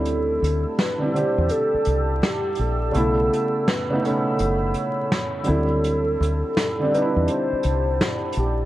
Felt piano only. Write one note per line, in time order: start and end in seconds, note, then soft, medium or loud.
0.00 0.71 D3 medium
0.00 0.72 G3 medium
0.00 0.73 C4 medium
0.00 0.77 E4 medium
0.98 1.09 D3 medium
0.98 1.10 G3 medium
0.98 1.11 C4 medium
1.03 1.12 E4 medium
1.14 2.29 D3 medium
1.14 2.30 G3 medium
1.14 2.31 C4 medium
1.19 2.31 G4 medium
2.92 3.64 C#3 medium
2.92 3.65 A3 medium
2.92 3.66 B3 medium
2.96 3.66 E4 medium
3.90 3.99 C#3 medium
3.90 4.00 A3 medium
3.90 4.01 B3 medium
3.95 4.02 D#4 medium
4.00 5.17 C#3 medium
4.00 5.18 A3 medium
4.00 5.19 B3 medium
4.05 5.19 C#4 medium
5.43 6.48 D3 medium
5.43 5.54 F#3 medium
5.43 6.50 C4 medium
5.48 6.52 G3 medium
5.48 6.51 E4 medium
6.79 6.89 D3 medium
6.79 6.90 G3 medium
6.79 6.90 C4 medium
6.84 6.91 D4 medium
6.91 8.07 D3 medium
6.91 8.08 G3 medium
6.91 8.08 C4 medium
6.95 7.02 D#4 medium
7.02 8.12 E4 medium